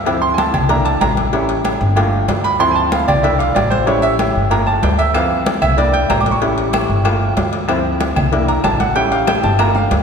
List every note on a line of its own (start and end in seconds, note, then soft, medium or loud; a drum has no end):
0.00 0.48 D2 medium
0.05 0.51 F3 medium
0.05 0.52 C4 soft
0.05 0.52 E4 medium
0.05 cowbell loud
0.05 high conga soft
0.05 low agogo loud
0.22 0.37 C6 loud
0.22 high conga soft
0.34 0.36 G#5 medium
0.38 0.68 A5 medium
0.38 cowbell medium
0.38 high conga loud
0.38 low timbale medium
0.38 low agogo medium
0.54 0.98 C2 medium
0.54 high conga soft
0.54 low conga medium
0.54 low agogo loud
0.69 1.30 A#3 medium
0.69 1.30 D4 medium
0.69 1.30 E4 medium
0.69 0.85 A#5 medium
0.69 cowbell loud
0.69 high conga soft
0.69 low conga medium
0.85 1.01 A5 medium
0.85 cowbell medium
0.85 high conga soft
1.01 1.75 A1 medium
1.01 1.11 A#5 medium
1.01 cowbell medium
1.01 high conga medium
1.01 low timbale medium
1.01 low agogo loud
1.17 cowbell medium
1.17 high conga medium
1.33 1.54 G3 medium
1.33 1.54 C#4 medium
1.33 1.55 E4 medium
1.33 cowbell loud
1.33 high conga soft
1.33 low agogo medium
1.49 cowbell medium
1.49 high conga soft
1.65 cowbell medium
1.65 high conga medium
1.65 low timbale medium
1.65 low agogo loud
1.81 2.25 G1 loud
1.81 high conga soft
1.96 2.57 A3 medium
1.96 2.57 A#3 medium
1.96 2.58 F4 medium
1.96 cowbell loud
1.96 high conga soft
1.96 low agogo loud
2.13 high conga soft
2.28 3.02 D2 medium
2.28 cowbell medium
2.28 high conga medium
2.28 low timbale medium
2.28 low agogo medium
2.44 2.60 B5 loud
2.44 cowbell medium
2.59 3.20 F3 medium
2.59 3.21 C4 medium
2.59 3.21 E4 medium
2.59 2.76 C6 loud
2.59 cowbell medium
2.59 high conga soft
2.59 low agogo medium
2.71 2.74 G#5 medium
2.75 2.91 A5 medium
2.75 high conga soft
2.92 3.08 F5 medium
2.92 cowbell medium
2.92 high conga medium
2.92 low timbale medium
2.92 low agogo medium
3.08 3.53 C2 medium
3.08 3.23 D5 loud
3.08 high conga soft
3.08 low conga medium
3.08 low agogo loud
3.23 3.45 A#3 medium
3.23 3.45 D4 soft
3.23 3.45 E4 medium
3.23 3.39 E5 medium
3.23 cowbell loud
3.23 high conga soft
3.39 3.55 F5 medium
3.39 cowbell medium
3.39 high conga soft
3.54 4.30 A1 medium
3.54 3.71 D5 medium
3.54 cowbell medium
3.54 high conga medium
3.54 low timbale medium
3.54 low agogo loud
3.70 3.87 C5 medium
3.70 cowbell medium
3.70 high conga medium
3.86 4.32 G3 medium
3.86 4.33 C#4 medium
3.86 4.33 E4 medium
3.86 4.03 C#5 medium
3.86 cowbell loud
3.86 high conga soft
3.86 low agogo medium
4.02 4.12 E5 loud
4.02 cowbell medium
4.02 high conga soft
4.19 cowbell medium
4.19 high conga medium
4.19 low timbale medium
4.19 low agogo loud
4.35 4.80 G1 medium
4.35 high conga soft
4.50 5.11 A3 medium
4.50 5.11 A#3 medium
4.50 5.12 F4 medium
4.50 4.67 A#5 medium
4.50 cowbell loud
4.50 high conga soft
4.50 low agogo loud
4.67 4.82 A5 medium
4.67 high conga soft
4.83 5.57 D2 medium
4.83 4.98 G5 medium
4.83 cowbell medium
4.83 high conga medium
4.83 low timbale medium
4.83 low agogo medium
4.99 5.14 E5 medium
4.99 cowbell medium
5.14 5.60 E3 medium
5.14 5.60 F3 medium
5.14 5.60 C4 soft
5.14 5.59 F5 loud
5.14 cowbell loud
5.14 high conga soft
5.14 low agogo loud
5.14 claves medium
5.31 high conga soft
5.46 cowbell medium
5.46 high conga loud
5.46 low timbale medium
5.46 low agogo medium
5.62 6.06 C2 loud
5.62 5.78 E5 loud
5.62 high conga soft
5.62 low conga medium
5.62 low agogo loud
5.62 claves medium
5.77 5.99 A#3 medium
5.77 5.99 D4 medium
5.77 6.00 E4 medium
5.77 5.93 D5 medium
5.77 cowbell loud
5.77 high conga soft
5.93 6.09 G5 medium
5.93 cowbell medium
5.93 high conga soft
6.10 6.84 A1 medium
6.10 6.20 A#5 medium
6.10 cowbell medium
6.10 high conga medium
6.10 low timbale medium
6.10 low agogo loud
6.10 claves medium
6.21 6.31 D6 medium
6.26 cowbell medium
6.26 high conga medium
6.31 7.07 C#6 medium
6.41 7.02 G3 medium
6.41 7.02 C#4 medium
6.41 7.03 E4 medium
6.41 cowbell loud
6.41 high conga soft
6.41 low agogo medium
6.58 cowbell medium
6.58 high conga soft
6.73 cowbell medium
6.73 high conga medium
6.73 low timbale medium
6.73 low agogo loud
6.73 claves medium
6.89 7.34 G1 loud
6.89 high conga soft
7.04 7.65 A3 medium
7.04 7.66 A#3 medium
7.04 7.66 F4 medium
7.04 cowbell loud
7.04 high conga soft
7.04 low agogo loud
7.04 claves medium
7.22 high conga soft
7.37 8.11 D2 medium
7.37 cowbell medium
7.37 high conga medium
7.37 low timbale medium
7.37 low agogo medium
7.53 cowbell medium
7.68 8.14 F3 medium
7.68 8.14 C4 medium
7.68 8.14 E4 medium
7.68 cowbell loud
7.68 high conga soft
7.68 low agogo medium
7.68 claves medium
7.85 high conga soft
8.00 cowbell medium
8.00 high conga medium
8.00 low timbale medium
8.00 low agogo loud
8.16 8.61 C2 loud
8.16 high conga soft
8.16 low conga medium
8.16 low agogo loud
8.16 claves medium
8.32 8.77 A#3 medium
8.32 8.78 D4 soft
8.32 8.78 E4 medium
8.32 cowbell loud
8.32 high conga soft
8.48 8.64 A#5 medium
8.48 cowbell medium
8.48 high conga soft
8.64 9.38 A1 medium
8.64 8.80 A5 medium
8.64 cowbell medium
8.64 high conga medium
8.64 low timbale medium
8.64 low agogo medium
8.64 claves medium
8.80 8.95 F#5 medium
8.80 cowbell medium
8.80 high conga medium
8.95 9.56 G3 medium
8.95 9.56 C#4 medium
8.95 9.57 E4 medium
8.95 9.11 G5 loud
8.95 cowbell loud
8.95 high conga soft
8.95 low agogo medium
9.12 9.27 F5 medium
9.12 cowbell medium
9.12 high conga soft
9.27 9.43 G5 medium
9.27 cowbell medium
9.27 high bongo loud
9.27 high conga medium
9.27 low timbale medium
9.27 low agogo loud
9.27 claves medium
9.44 9.88 G1 loud
9.44 9.59 A5 medium
9.44 high bongo medium
9.44 high conga soft
9.59 9.80 A3 medium
9.59 9.81 A#3 medium
9.59 9.81 F4 medium
9.59 9.75 A#5 loud
9.59 cowbell loud
9.59 high bongo medium
9.59 high conga soft
9.59 low agogo loud
9.59 claves medium
9.75 9.85 F5 medium
9.75 low bongo medium
9.75 high conga soft
9.91 10.03 D2 medium
9.91 cowbell medium
9.91 high conga medium
9.91 low timbale medium
9.91 low agogo medium